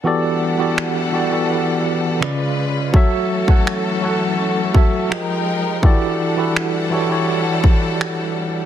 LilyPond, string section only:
\new Staff \with { instrumentName = "String section" } { \time 4/4 \key e \dorian \tempo 4 = 83 << { <e g a' fis''>2. <cis gis eis' b'>4 | <e a fis' a'>2. <f aes bes' g''>4 | <e g a' fis''>1 | } \\ { d'2. cis'4~ | cis'2. ees'4 | d'1 | } >> }